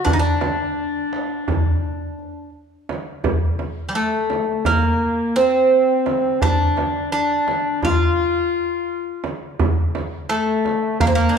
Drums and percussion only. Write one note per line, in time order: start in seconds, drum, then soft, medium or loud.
0.06 frame drum medium
0.06 darbuka dum medium
0.41 darbuka tek medium
0.41 frame drum medium
1.13 darbuka tek medium
1.48 frame drum medium
1.48 darbuka dum medium
2.19 darbuka ka soft
2.89 darbuka tek medium
2.89 frame drum medium
3.24 darbuka dum medium
3.24 frame drum medium
3.59 frame drum medium
4.30 darbuka tek medium
4.30 frame drum medium
4.65 frame drum medium
4.65 darbuka dum medium
6.06 darbuka tek medium
6.06 frame drum medium
6.42 frame drum medium
6.42 darbuka dum medium
6.77 darbuka tek medium
6.77 frame drum medium
7.48 darbuka tek medium
7.48 frame drum medium
7.83 darbuka dum medium
7.83 frame drum medium
9.24 darbuka tek medium
9.24 frame drum medium
9.59 frame drum medium
9.59 darbuka dum medium
9.95 darbuka tek medium
9.95 frame drum medium
10.65 darbuka tek medium
10.65 frame drum medium
11.00 darbuka dum medium
11.00 frame drum medium